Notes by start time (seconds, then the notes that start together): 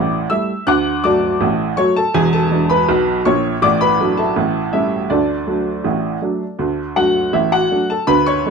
Already playing: A1 A2 D5 D6
0.30 G3 A3 E4 E5 E6
0.67 D2 D3 F#5 D6 F#6
1.04 F#3 A3 F#4 D5 A5 D6
1.41 A1 A2
1.77 F#3 A3 F#4 C#5 C#6
1.97 A4 A5
2.14 E1 E2 G#4 G#5
2.33 A4 A5
2.51 E3 G#3 D4
2.70 B4 B5
2.89 B1 B2
3.25 A#1 A#2 C#5 C#6
3.62 A1 A2 D5 D6
3.81 B4 B5
4.00 F#3 A3 D4
4.17 A4 E5 A5
4.36 A1 A2
4.73 G3 A3 C#4 E4 E5
5.10 D2 D3 D4 A4 D5
5.47 F#3 A3 D4
5.84 A1 A2
6.21 F#3 A3 D4
6.59 D2 D3
6.96 F#3 A3 D4 F#4 F#5
7.33 A1 A2 E4 E5
7.52 F#4 F#5
7.71 F#3 A3 D4
7.90 A4 A5
8.07 D2 D3 B4 B5
8.26 C#5 C#6
8.46 F#3 A3 D4